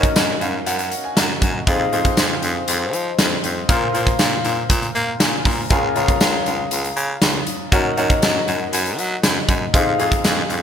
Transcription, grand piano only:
0.00 1.69 C#4 medium
0.00 1.67 D#4 medium
0.00 1.68 F#4 medium
0.00 1.69 A#4 medium
0.00 1.68 D#5 medium
0.00 0.41 F5 medium
0.00 1.04 G#5 medium
0.41 0.65 F5 medium
0.67 1.02 F#5 medium
1.04 1.16 G#5 medium
1.17 1.64 A#5 medium
1.67 1.88 C4 medium
1.67 1.88 D#4 medium
1.67 1.88 F4 medium
1.67 1.88 G#4 medium
1.67 1.89 D#5 medium
1.92 2.76 C4 medium
1.92 2.76 D#4 medium
1.92 2.77 F4 medium
1.92 2.77 G#4 medium
1.92 2.77 C5 loud
3.68 4.41 A#2 medium
3.68 3.90 F4 medium
3.68 3.90 A#4 medium
3.68 3.90 C5 medium
3.93 4.78 F4 medium
3.93 4.78 A#4 medium
3.93 4.78 C5 loud
4.95 5.18 F5 medium
5.20 5.43 G#5 medium
5.45 5.69 A#5 medium
5.70 6.42 C#3 medium
5.70 5.91 F4 medium
5.70 5.91 G#4 medium
5.70 5.92 A#4 medium
5.70 5.92 C#5 medium
5.70 5.92 G#5 medium
5.95 6.79 F4 medium
5.95 6.80 G#4 medium
5.95 6.80 A#4 medium
5.95 6.80 C#5 medium
5.95 6.80 A#5 loud
7.72 7.93 D#4 medium
7.72 7.93 F#4 medium
7.72 7.93 A#4 medium
7.72 7.93 C#5 medium
7.72 7.94 F#5 medium
7.97 8.81 D#4 medium
7.97 8.81 F#4 medium
7.97 8.81 A#4 medium
7.97 8.82 C#5 medium
7.97 8.82 F#5 medium
9.73 9.95 D#4 medium
9.73 9.95 F4 medium
9.73 9.95 G#4 medium
9.73 9.95 C5 medium
9.73 9.95 F5 loud
9.99 10.62 D#4 medium
9.99 10.62 F4 medium
9.99 10.62 G#4 medium
9.99 10.62 C5 medium
9.99 10.62 F5 medium

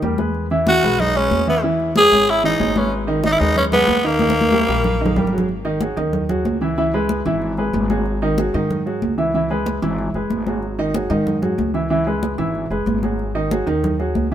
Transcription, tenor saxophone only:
0.68 1.01 F#4 loud
1.00 1.18 D#4 loud
1.16 1.48 C#4 loud
1.49 1.63 B3 medium
1.97 2.31 G#4 loud
2.30 2.45 E4 loud
2.45 2.79 D#4 medium
2.78 2.93 C#4 medium
3.26 3.34 D#4 loud
3.32 3.40 E4 loud
3.39 3.56 D#4 loud
3.57 3.64 C#4 medium
3.73 4.07 B3 loud
4.06 5.33 A#3 loud

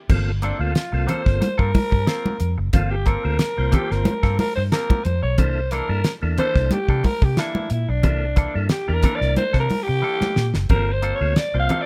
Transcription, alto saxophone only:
0.43 0.61 D4 medium
0.59 1.09 F4 medium
1.08 1.60 C5 loud
1.58 2.58 A#4 loud
2.74 2.92 F4 medium
2.91 3.08 G4 medium
3.06 3.75 A#4 loud
3.73 3.92 G4 medium
3.91 4.39 A#4 medium
4.39 4.55 A#4 loud
4.55 4.63 C5 medium
4.71 5.06 A#4 loud
5.04 5.22 C5 medium
5.22 5.39 C#5 medium
5.38 5.73 C5 medium
5.71 6.11 A#4 medium
6.38 6.74 C5 loud
6.72 7.06 G4 medium
7.05 7.25 A#4 medium
7.23 7.40 G4 medium
7.39 7.71 E4 medium
7.73 7.91 E4 medium
7.89 8.55 D4 medium
8.71 8.95 G4 medium
8.93 9.17 A#4 loud
9.15 9.36 D5 loud
9.37 9.57 C5 loud
9.60 9.84 A#4 loud
9.82 10.48 G4 loud
10.70 10.94 A#4 loud
10.92 11.16 C5 loud
11.15 11.38 C#5 loud
11.37 11.59 D5 medium
11.59 11.83 F5 loud
11.81 11.86 D5 loud

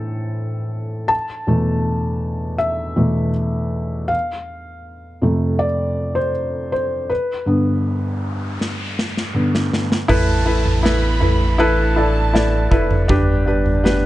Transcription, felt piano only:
0.00 1.12 A2 soft
0.00 1.12 E3 soft
0.00 1.11 C4 soft
0.00 1.13 A4 medium
0.00 1.11 C5 medium
1.08 2.55 A5 medium
1.47 2.56 E2 soft
1.47 2.56 B2 soft
1.47 2.56 A3 soft
2.58 4.14 E5 medium
2.96 3.30 E2 soft
2.96 3.31 B2 soft
2.96 3.31 A3 soft
4.08 5.63 F5 medium
5.22 6.30 F2 soft
5.22 6.31 C3 soft
5.22 6.31 A3 soft
5.59 6.17 D5 medium
6.15 6.71 C5 medium
6.72 7.11 C5 medium
7.10 9.68 B4 medium
7.46 8.55 G2 soft
7.46 8.55 D3 soft
7.46 8.56 B3 soft
9.34 9.68 G2 soft
9.34 9.68 D3 soft
9.34 9.68 B3 soft
10.08 11.18 A2 medium
10.08 10.44 E4 loud
10.08 10.45 A4 loud
10.08 10.45 B4 loud
10.46 10.81 E4 medium
10.46 10.82 A4 medium
10.46 10.83 B4 medium
10.83 11.19 E4 medium
10.83 11.20 A4 medium
10.83 11.20 B4 medium
11.20 11.57 E4 medium
11.20 11.57 A4 medium
11.20 11.58 B4 medium
11.58 11.95 E4 loud
11.58 11.95 A4 loud
11.58 11.95 B4 loud
11.96 12.32 E4 medium
11.96 12.33 A4 medium
11.96 12.33 D5 medium
12.33 12.69 E4 medium
12.33 12.70 A4 medium
12.33 12.70 D5 medium
12.71 13.07 E4 medium
12.71 13.08 A4 medium
12.71 13.08 B4 medium
13.08 14.06 G2 medium
13.08 13.44 D4 loud
13.08 13.45 G4 loud
13.08 13.45 B4 loud
13.46 13.82 D4 medium
13.46 13.83 G4 medium
13.46 13.83 B4 medium
13.84 14.06 D4 medium
13.84 14.06 G4 medium
13.84 14.06 B4 loud

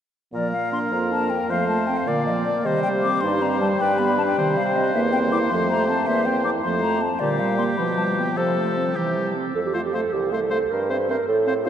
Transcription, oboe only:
0.35 1.52 A#4 soft
1.50 2.09 C5 soft
2.08 2.68 D5 soft
2.66 3.82 C5 soft
3.81 4.38 B4 soft
4.39 6.49 C5 soft
6.66 7.01 C5 soft
7.22 8.39 G4 soft
8.37 8.97 A4 soft
8.96 9.36 G4 soft
9.74 9.81 C5 soft
9.94 10.01 C5 soft
10.33 10.40 C5 soft
10.51 10.58 C5 soft
10.90 10.97 C5 soft
11.10 11.17 C5 soft
11.47 11.54 C5 soft

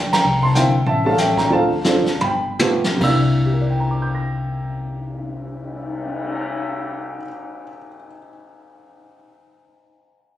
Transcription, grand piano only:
0.00 0.12 D5 medium
0.00 0.13 G5 medium
0.13 0.42 G5 medium
0.13 0.41 A#5 loud
0.43 0.55 A5 medium
0.43 0.56 C6 medium
0.55 0.73 D3 medium
0.55 0.73 A#3 medium
0.55 0.73 C4 medium
0.55 0.73 E4 medium
0.55 0.85 E5 medium
0.55 0.87 G5 medium
0.87 1.06 E5 medium
0.87 1.04 A5 medium
1.05 1.48 G3 medium
1.05 1.48 A#3 medium
1.05 1.49 C#4 medium
1.05 1.49 A4 medium
1.05 1.19 F5 medium
1.05 1.19 A5 medium
1.18 1.38 E5 medium
1.18 1.38 G5 medium
1.38 1.51 G5 medium
1.38 1.51 A#5 medium
1.50 1.69 F3 medium
1.50 1.69 C4 medium
1.50 1.70 D4 medium
1.50 1.70 A4 medium
1.50 2.24 A5 medium
1.55 2.19 F5 medium
1.85 2.05 F3 medium
1.85 2.05 C4 medium
1.85 2.05 D4 medium
1.85 2.06 A4 medium
2.21 2.82 G5 medium
2.21 2.81 B5 medium
2.59 2.82 F3 medium
2.59 2.82 A3 medium
2.59 2.83 B3 medium
2.59 2.83 G4 medium
2.95 7.15 C3 medium
2.99 7.19 A#3 medium
2.99 7.23 D4 medium
3.03 7.27 E4 medium
3.03 7.19 E6 medium
3.46 7.62 G4 soft
3.53 7.69 A#4 soft
3.61 7.77 D5 soft
3.70 7.86 G5 soft
3.80 7.96 A#5 soft
3.91 8.07 D6 soft
4.02 8.18 G6 soft
4.15 8.27 A#6 soft

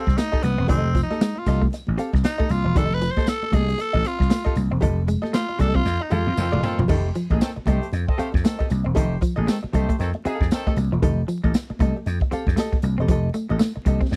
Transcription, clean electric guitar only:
0.18 0.29 A3 medium
0.33 muted clean electric guitar stroke soft
0.58 0.66 C4 medium
0.70 0.81 D#3 medium
0.95 1.07 F3 medium
1.11 muted clean electric guitar stroke soft
1.21 1.33 G#3 medium
1.47 muted clean electric guitar stroke soft
1.61 1.70 A3 medium
1.98 2.10 C4 medium
2.40 2.48 A3 medium
2.50 muted clean electric guitar stroke soft
2.66 2.73 F3 medium
2.76 2.88 D#3 medium
3.02 3.13 F3 medium
3.17 muted clean electric guitar stroke soft
3.53 3.65 A3 medium
4.05 4.17 C4 medium
4.30 4.42 A3 medium
4.46 muted clean electric guitar stroke soft
4.72 4.80 C4 medium
4.82 4.94 F3 medium
5.08 5.20 G#3 medium
5.24 muted clean electric guitar stroke soft
5.33 5.45 A3 medium
5.59 muted clean electric guitar stroke soft
5.74 5.83 C4 medium
6.12 6.23 G#3 medium
6.52 6.60 A3 medium
6.63 muted clean electric guitar stroke soft
6.79 6.87 F3 medium
6.90 7.01 D#3 medium
7.16 7.27 F3 medium
7.31 muted clean electric guitar stroke soft
7.67 7.78 A3 medium
8.18 8.30 C4 medium
8.45 8.56 A3 medium
8.60 muted clean electric guitar stroke soft
8.86 8.94 C4 medium
8.96 9.08 D#3 medium
9.22 9.34 F3 medium
9.38 muted clean electric guitar stroke soft
9.47 9.59 G#3 medium
9.73 muted clean electric guitar stroke soft
9.89 9.97 A3 medium
10.25 10.37 C4 medium
10.67 10.74 A3 medium
10.77 muted clean electric guitar stroke soft
10.92 11.00 F3 medium
11.03 11.14 D#3 medium
11.28 11.40 F3 medium
11.43 muted clean electric guitar stroke soft
11.80 11.92 A3 medium
12.31 12.43 C4 medium
12.56 12.68 A3 medium
12.72 muted clean electric guitar stroke soft
12.98 13.06 C4 medium
13.08 13.20 F3 medium
13.34 13.46 A3 medium
13.49 muted clean electric guitar stroke soft
13.59 13.71 A3 medium
13.85 muted clean electric guitar stroke soft
14.01 14.09 C4 medium

